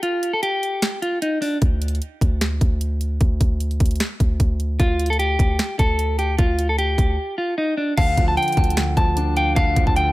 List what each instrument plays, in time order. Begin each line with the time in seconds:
0.03 clean electric guitar F4, closed hi-hat
0.23 closed hi-hat
0.33 clean electric guitar A4
0.43 clean electric guitar G4, closed hi-hat
0.63 closed hi-hat
0.82 finger snap, snare, closed hi-hat
1.02 clean electric guitar F4, closed hi-hat
1.22 clean electric guitar D#4, closed hi-hat
1.42 clean electric guitar D4, open hi-hat
1.62 808-style bass D2, kick, closed hi-hat
1.82 closed hi-hat
1.88 closed hi-hat
1.95 closed hi-hat
2.02 closed hi-hat
2.21 808-style bass D2, kick, closed hi-hat
2.41 finger snap, snare, closed hi-hat
2.61 808-style bass D2, kick, closed hi-hat
2.81 closed hi-hat
3.01 closed hi-hat
3.21 808-style bass D2, kick, closed hi-hat
3.41 808-style bass D2, kick, closed hi-hat
3.60 closed hi-hat
3.71 closed hi-hat
3.80 808-style bass D2, kick, closed hi-hat
3.86 closed hi-hat
3.91 closed hi-hat
3.96 closed hi-hat
4.00 finger snap, snare, closed hi-hat
4.20 808-style bass D2, kick, closed hi-hat
4.40 808-style bass D2, kick, closed hi-hat
4.60 closed hi-hat
4.79 808-style bass D2, clean electric guitar F4, kick, closed hi-hat
5.00 closed hi-hat
5.06 clean electric guitar A4, closed hi-hat
5.13 closed hi-hat
5.19 clean electric guitar G4, closed hi-hat
5.39 808-style bass D2, kick, closed hi-hat
5.59 finger snap, snare, closed hi-hat
5.79 808-style bass D2, clean electric guitar A4, kick, closed hi-hat
5.99 closed hi-hat
6.19 clean electric guitar G4, closed hi-hat
6.38 808-style bass D2, clean electric guitar F4, kick, closed hi-hat
6.59 closed hi-hat
6.69 clean electric guitar A4
6.78 clean electric guitar G4, closed hi-hat
6.98 808-style bass D2, kick, closed hi-hat
7.38 clean electric guitar F4
7.58 clean electric guitar D#4
7.77 clean electric guitar D4
7.97 808-style bass D2, grand piano D3, clean electric guitar F5, synth bell A5, kick, closed hi-hat, crash
8.17 808-style bass D2, grand piano F3, kick, closed hi-hat
8.28 clean electric guitar A5
8.37 grand piano D3, clean electric guitar G5, synth bell G5, closed hi-hat
8.43 closed hi-hat
8.48 closed hi-hat
8.52 closed hi-hat
8.57 808-style bass D2, synth bell A5, kick, closed hi-hat
8.64 closed hi-hat
8.70 closed hi-hat
8.77 grand piano D3, finger snap, snare, closed hi-hat
8.97 808-style bass D2, grand piano F3, clean electric guitar A5, kick, closed hi-hat
9.17 grand piano D4, synth bell A5, closed hi-hat
9.37 synth bell F5, clean electric guitar G5, closed hi-hat
9.56 808-style bass D2, grand piano D3, clean electric guitar F5, synth bell A5, kick, closed hi-hat
9.76 808-style bass D2, grand piano F3, kick, closed hi-hat
9.87 808-style bass D2, clean electric guitar A5, kick
9.96 grand piano D3, synth bell G5, clean electric guitar G5, closed hi-hat